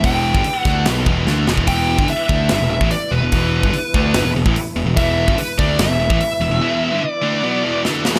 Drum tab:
HH |o---o---o-------|o---o---o---o---|o---o---o---o---|o---o---o---o---|
SD |------o-o---o-o-|--------o-------|--------o-------|--------o-------|
BD |o--o--o---o----o|o--o--o----o----|o--o--o----o----|o--o--o----o----|

HH |----------------|
SD |------------o-oo|
BD |----------------|